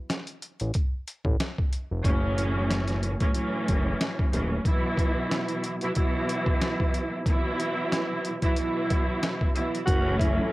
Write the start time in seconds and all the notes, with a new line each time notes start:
0.10 snare, closed hi-hat
0.27 closed hi-hat
0.42 closed hi-hat
0.60 A1, closed hi-hat
0.74 kick, closed hi-hat
1.08 closed hi-hat
1.25 A1, kick
1.40 snare, closed hi-hat
1.58 kick
1.73 closed hi-hat
1.91 F1
2.04 F#1 A2 E3 F#3 C#4, kick, closed hi-hat
2.38 closed hi-hat
2.71 snare, closed hi-hat
2.88 snare, closed hi-hat
3.03 closed hi-hat
3.20 A2 E3 F#3 C#4, kick, closed hi-hat
3.33 A2 E3 F#3 C#4, closed hi-hat
3.68 F#1, kick, closed hi-hat
4.01 snare, closed hi-hat
4.19 kick
4.32 D#1 A2 E3 F#3 C#4, closed hi-hat
4.65 B2 E3 F#3 E4, kick, closed hi-hat
4.97 kick, closed hi-hat
5.31 snare, closed hi-hat
5.48 closed hi-hat
5.64 closed hi-hat
5.81 B2 E3 F#3 E4, closed hi-hat
5.94 B2 E3 F#3 E4, kick, closed hi-hat
6.29 closed hi-hat
6.46 kick
6.61 snare, closed hi-hat
6.80 kick
6.94 closed hi-hat
7.26 B2 E3 F#3 E4, kick, closed hi-hat
7.60 closed hi-hat
7.92 snare, closed hi-hat
8.25 closed hi-hat
8.42 B2 E3 F#3 E4, kick, closed hi-hat
8.56 B2 E3 F#3 E4, closed hi-hat
8.90 kick, closed hi-hat
9.23 snare, closed hi-hat
9.41 kick
9.53 B2 E3 F#3 E4, closed hi-hat
9.75 closed hi-hat
9.86 F#1 A2 E3 F#3 C#4 E4 F#4 A4, kick, closed hi-hat
10.18 E4, kick, closed hi-hat